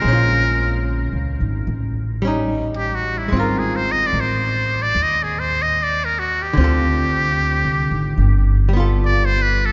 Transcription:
0.00 1.66 G#3 soft
0.00 0.88 A#4 medium
0.04 1.09 A#1 medium
0.04 1.69 C#4 medium
0.13 1.71 F4 medium
1.13 1.38 C#2 medium
1.40 1.65 G#1 medium
1.67 3.27 A1 medium
2.22 3.28 G3 soft
2.22 3.32 C#4 soft
2.27 3.33 D#4 medium
2.77 2.96 G4 medium
2.95 3.19 F#4 medium
3.18 3.40 E4 medium
3.28 4.10 G#1 medium
3.28 6.55 G#3 soft
3.33 6.56 C4 soft
3.33 6.59 F4 soft
3.39 3.60 F4 medium
3.39 6.60 A#4 soft
3.58 3.77 G#4 medium
3.76 3.93 C5 medium
3.91 4.08 D#5 medium
4.06 4.21 D5 medium
4.13 4.91 A1 medium
4.20 4.83 C5 medium
4.82 5.04 D5 medium
4.95 6.52 D#2 medium
5.03 5.24 D#5 medium
5.23 5.40 G#4 medium
5.39 5.63 C5 medium
5.62 5.85 D#5 medium
5.83 6.06 D5 medium
6.05 6.21 A#4 medium
6.19 6.44 F#4 medium
6.42 8.44 G4 medium
6.53 7.60 D2 medium
6.53 8.15 D3 medium
6.57 8.18 C4 medium
6.57 8.19 F4 medium
6.64 8.21 A4 medium
7.64 7.89 C2 medium
7.91 8.16 G#1 medium
8.18 9.72 G1 medium
8.69 9.72 G3 soft
8.73 9.72 B3 soft
8.73 9.72 F4 medium
8.80 9.72 A4 soft
9.04 9.27 D5 medium
9.25 9.43 C5 medium
9.42 9.67 B4 medium
9.66 9.72 A4 medium

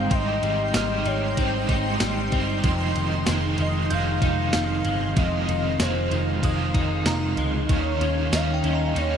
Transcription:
0.00 0.42 G3 medium
0.00 0.11 C4 medium
0.00 1.38 C4 medium
0.00 0.12 D#4 medium
0.00 1.69 D#4 medium
0.00 9.17 D#4 medium
0.00 0.12 G4 medium
0.00 0.15 F5 loud
0.00 0.37 A#5 medium
0.00 7.65 C6 medium
0.00 0.55 D#6 medium
0.10 0.39 G#1 loud
0.10 0.72 G#3 medium
0.10 1.37 C4 medium
0.10 0.76 D#4 medium
0.10 0.76 G4 medium
0.10 1.08 D#5 loud
0.10 2.62 G5 medium
0.10 2.26 C6 medium
0.10 kick loud
0.10 ride medium
0.43 0.71 G#1 loud
0.43 1.05 G3 medium
0.43 ride soft
0.73 1.02 G#1 loud
0.73 1.35 G#3 medium
0.73 1.38 D#4 medium
0.73 2.90 F6 medium
0.73 snare loud
0.73 ride soft
0.73 tambourine medium
0.78 1.38 G4 medium
1.06 1.34 G#1 medium
1.06 2.00 G3 medium
1.06 1.40 C#5 loud
1.06 ride soft
1.36 1.65 G#1 loud
1.36 2.34 G#3 medium
1.36 2.35 C4 medium
1.36 2.32 C4 medium
1.36 2.33 D#4 medium
1.36 2.30 G4 medium
1.36 2.33 C5 medium
1.36 kick medium
1.36 ride medium
1.69 1.97 G#1 loud
1.69 4.22 D#4 medium
1.69 kick medium
1.69 ride soft
2.00 2.29 G#1 loud
2.00 2.71 G3 medium
2.00 snare loud
2.00 ride medium
2.00 tambourine medium
2.31 2.60 G1 medium
2.31 3.27 C4 medium
2.31 2.65 D#4 medium
2.31 2.63 G4 medium
2.31 kick medium
2.31 ride soft
2.36 2.65 C4 soft
2.63 2.92 F1 loud
2.63 3.27 F2 medium
2.63 5.15 F2 medium
2.63 3.27 C3 medium
2.63 3.26 D#3 medium
2.63 3.27 G#3 medium
2.63 3.28 C4 loud
2.63 3.29 F4 loud
2.63 9.17 F5 medium
2.63 kick loud
2.63 ride medium
2.95 3.23 F1 loud
2.95 3.59 D#3 medium
2.95 ride soft
3.26 3.55 F1 loud
3.26 3.91 D#3 medium
3.26 3.89 G#3 medium
3.26 3.91 G#3 medium
3.26 3.92 C4 medium
3.26 snare loud
3.26 ride soft
3.26 tambourine medium
3.31 3.95 F4 medium
3.58 3.87 F1 loud
3.58 4.53 D#3 medium
3.58 3.93 D#5 loud
3.58 ride soft
3.88 4.19 F1 loud
3.88 5.15 F2 medium
3.88 5.16 C3 medium
3.88 5.17 D#3 medium
3.88 4.84 G#3 medium
3.88 4.53 F5 loud
3.88 6.05 G6 medium
3.88 ride medium
3.93 5.17 G#3 medium
3.93 5.18 C4 medium
3.93 5.19 F4 medium
4.22 4.50 F1 loud
4.22 6.74 D#4 medium
4.22 kick loud
4.22 ride soft
4.53 4.82 F1 loud
4.53 5.48 D#3 medium
4.53 5.19 F5 loud
4.53 snare loud
4.53 ride medium
4.53 tambourine medium
4.85 5.13 G1 medium
4.85 5.79 G#3 medium
4.85 ride soft
5.16 5.45 F1 loud
5.16 5.80 F2 medium
5.16 7.69 F2 medium
5.16 5.80 C3 medium
5.16 5.78 D#3 medium
5.16 5.79 G#3 medium
5.16 5.81 C4 medium
5.16 5.82 F4 medium
5.16 5.83 D#5 loud
5.16 kick loud
5.16 ride medium
5.48 5.76 F1 medium
5.48 6.11 D#3 medium
5.48 ride medium
5.79 6.08 F1 loud
5.79 6.44 D#3 medium
5.79 6.41 G#3 medium
5.79 6.43 G#3 medium
5.79 6.44 C4 medium
5.79 6.44 C5 medium
5.79 snare loud
5.79 ride medium
5.79 tambourine medium
5.84 6.48 F4 medium
6.11 6.39 F1 medium
6.11 7.06 D#3 medium
6.11 ride soft
6.41 6.71 F1 loud
6.41 7.68 F2 medium
6.41 7.68 C3 medium
6.41 7.69 D#3 medium
6.41 7.37 G#3 medium
6.41 7.98 D#6 medium
6.41 kick medium
6.41 ride medium
6.46 7.70 G#3 medium
6.46 7.71 C4 medium
6.46 7.72 F4 medium
6.74 7.02 F1 loud
6.74 8.04 D#4 medium
6.74 kick medium
6.74 ride soft
7.06 7.34 F1 loud
7.06 7.69 D#3 medium
7.06 7.97 A#5 medium
7.06 snare loud
7.06 ride medium
7.06 tambourine medium
7.37 7.65 C#2 medium
7.37 7.76 G#3 medium
7.37 ride soft
7.69 7.97 D#2 loud
7.69 8.37 D#3 medium
7.69 9.17 D#3 medium
7.69 8.31 G3 medium
7.69 8.32 C#4 medium
7.69 8.35 D#4 medium
7.69 8.34 F4 medium
7.69 9.17 G4 medium
7.69 8.37 C#5 loud
7.69 9.17 C#6 medium
7.69 kick loud
7.69 ride medium
8.01 8.29 D#2 loud
8.01 8.63 C#4 medium
8.01 ride soft
8.32 8.60 D#2 loud
8.32 8.95 G3 medium
8.32 8.96 C#4 medium
8.32 8.95 D#4 medium
8.32 8.99 D#4 medium
8.32 9.17 D#5 medium
8.32 8.67 F5 loud
8.32 snare loud
8.32 ride medium
8.32 tambourine medium
8.37 8.98 F4 medium
8.54 9.17 G5 medium
8.64 8.92 D#2 medium
8.64 9.17 C#4 medium
8.64 9.00 D#5 loud
8.64 ride soft
8.75 9.17 A#5 medium
8.93 9.17 D#2 loud
8.93 9.17 D#3 medium
8.93 9.17 G3 medium
8.93 9.17 D#4 medium
8.93 ride medium
8.98 9.17 C#4 medium
8.98 9.17 D#4 medium
8.98 9.17 F4 medium
8.98 9.17 C#5 loud

